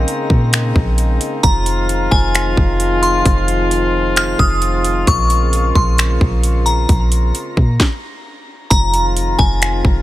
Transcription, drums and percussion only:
0.08 closed hi-hat
0.30 kick
0.53 finger snap, closed hi-hat
0.76 kick
0.98 closed hi-hat
1.21 closed hi-hat
1.43 kick, closed hi-hat
1.66 closed hi-hat
1.89 closed hi-hat
2.12 kick
2.35 finger snap, closed hi-hat
2.57 kick
2.80 closed hi-hat
3.03 closed hi-hat
3.26 kick, closed hi-hat
3.48 closed hi-hat
3.71 closed hi-hat
4.16 finger snap, closed hi-hat
4.39 kick
4.62 closed hi-hat
4.85 closed hi-hat
5.07 kick, closed hi-hat
5.30 closed hi-hat
5.53 closed hi-hat
5.75 kick
5.98 finger snap, closed hi-hat
6.21 kick
6.43 closed hi-hat
6.66 closed hi-hat
6.89 kick, closed hi-hat
7.12 closed hi-hat
7.35 closed hi-hat
7.57 kick
7.80 kick, snare
8.71 kick, closed hi-hat
8.94 closed hi-hat
9.17 closed hi-hat
9.39 kick
9.62 finger snap, closed hi-hat
9.85 kick

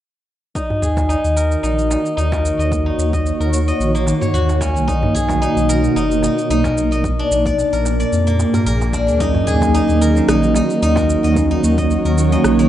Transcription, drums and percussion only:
0.55 kick, shaker
0.70 darbuka dum
0.82 kick, shaker
0.97 kick, darbuka tek, shaker
1.10 darbuka ka, shaker
1.25 shaker
1.37 shaker
1.52 shaker
1.64 shaker
1.79 shaker
1.91 darbuka ka, shaker
2.06 shaker
2.18 shaker
2.32 kick, darbuka ka, darbuka tek, shaker
2.45 shaker
2.60 shaker
2.72 kick, shaker
2.99 shaker
3.13 kick, shaker
3.26 shaker
3.41 shaker
3.53 shaker
3.68 shaker
3.81 shaker
3.95 shaker
4.06 darbuka ka, shaker
4.22 darbuka dum, shaker
4.35 shaker
4.49 darbuka ka, shaker
4.61 kick, darbuka tek, shaker
4.76 shaker
4.88 kick, shaker
5.03 darbuka dum
5.15 kick, shaker
5.29 kick, darbuka tek, shaker
5.42 darbuka ka, shaker
5.57 shaker
5.69 shaker
5.84 shaker
5.97 shaker
6.11 shaker
6.23 darbuka ka, shaker
6.38 shaker
6.51 shaker
6.64 kick, darbuka ka, darbuka tek, shaker
6.78 shaker
6.92 shaker
7.04 kick, shaker
7.32 shaker
7.46 kick, shaker
7.58 darbuka ka, shaker
7.73 shaker
7.85 darbuka tek, shaker
8.00 shaker
8.13 shaker
8.27 shaker
8.39 darbuka ka, shaker
8.54 darbuka dum, shaker
8.67 shaker
8.81 darbuka ka, shaker
8.93 kick, darbuka tek, shaker
9.08 shaker
9.20 kick, shaker
9.34 darbuka dum
9.47 kick, shaker
9.62 kick, darbuka tek, shaker
9.74 darbuka ka, shaker
9.90 shaker
10.02 shaker
10.17 shaker
10.29 cross-stick, shaker
10.43 shaker
10.55 darbuka ka, shaker
10.70 shaker
10.83 shaker
10.96 kick, darbuka ka, darbuka tek, shaker
11.10 shaker
11.24 shaker
11.36 kick, shaker
11.64 shaker
11.78 kick, shaker
11.91 shaker
12.05 shaker
12.18 shaker
12.32 shaker
12.44 cross-stick, shaker
12.59 shaker

